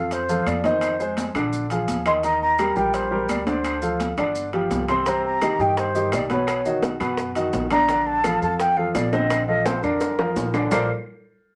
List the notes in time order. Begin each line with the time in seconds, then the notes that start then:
Already playing: F2 F3 F4 A4 F5
0.11 C5, high conga, high timbale, maracas
0.29 F3 F4 A4, high conga, maracas
0.46 F2 D5, high conga, high timbale, claves, maracas
0.64 D#3 D#4 C5 D#5, high conga, high timbale, maracas
0.81 high conga, high timbale, claves, maracas
1.00 G#3 G#4 C5, high conga, maracas
1.17 high conga, high timbale, maracas
1.34 A#1 D3 D4 D5, high conga, high timbale, claves, maracas
1.53 high conga, maracas
1.70 F3 F4 G#4, high conga, high timbale, maracas
1.87 D#2, high conga, high timbale, maracas
2.06 D#3 D#4 D#5 C6, high timbale, claves, maracas
2.23 D#3 D#4 D#5 A#5, high conga, high timbale, maracas
2.42 A#5, high conga
2.58 G3 G4 A#4, high conga, high timbale, claves, maracas
2.76 A#1 G3 G4 A#4 G5, maracas
2.94 C5, high conga, high timbale, maracas
3.11 G3 G4 A#4, high conga
3.29 D2 D5, high conga, high timbale, claves, maracas
3.47 D3 D4 C5 D5, high conga, high timbale, maracas
3.64 high conga, high timbale, claves, maracas
3.82 F3 F4 A4, high conga, maracas
4.00 high conga, high timbale, maracas
4.17 G1 D3 D4 D5, high conga, high timbale, claves, maracas
4.35 high conga, maracas
4.53 F3 F4 G4, high conga, high timbale
4.70 C2, high conga, high timbale, low timbale, maracas
4.88 C3 C4 C5 C6, high timbale, claves, maracas
5.06 C3 C4 C5 A#5, high bongo, high conga, high timbale, maracas
5.24 A#5, high bongo, high conga
5.42 D#3 D#4 G4, high bongo, high conga, high timbale, claves, maracas
5.59 G2 D#3 D#4 G4 G5, high bongo, maracas
5.77 C5, high bongo, high conga, high timbale, maracas
5.95 D#3 D#4 G4, high conga, maracas
6.12 B1 D5, high bongo, low bongo, high conga, high timbale, claves, maracas
6.30 B2 B3 B4 C#5, high bongo, high conga, high timbale, maracas
6.47 high bongo, high timbale, claves, maracas
6.65 D#3 D#4 F#4, high bongo, high conga, maracas
6.82 high bongo, high conga, high timbale, maracas
7.00 F#2 B2 B3 B4, high bongo, high conga, high timbale, claves, maracas
7.17 high bongo, high conga, maracas
7.35 D#3 D#4 F#4, high conga, high timbale, maracas
7.53 A#1, high bongo, low bongo, high conga, high timbale, low timbale, maracas
7.70 D3 D4 D5 A#5, high bongo, high conga, high timbale, claves, maracas
7.88 D3 D4 D5, high bongo, high timbale, maracas
8.07 A5, high bongo, high conga
8.24 F3 F4 A4, high bongo, high conga, high timbale, claves, maracas
8.41 F2 F3 F4 A4 A5, high bongo, maracas
8.60 G5, high bongo, high conga, high timbale, maracas
8.77 F3 F4 A4 F5, high conga
8.95 A#1 D5, high bongo, low bongo, high conga, high timbale, low timbale, claves, maracas
9.12 D3 C4 C5 D#5, high bongo, high conga, high timbale, maracas
9.30 high bongo, high conga, high timbale, claves, maracas
9.47 F3 F4 A4 D#5, high bongo, high conga
9.65 C5, high bongo, high conga, high timbale, maracas
9.83 F2 D3 D4 A#4 D5, high bongo, high conga, claves, maracas
10.00 high bongo, high conga, low timbale, maracas
10.19 F3 F4 A#4, high bongo, high conga, low timbale
10.36 A#1, low bongo, high conga, low timbale, maracas
10.54 D3 D4 D5, low bongo, low timbale, claves, maracas
10.71 A#1 A#3 F4 A4 A#4 C5 D5, low bongo, low conga, low timbale, claves, maracas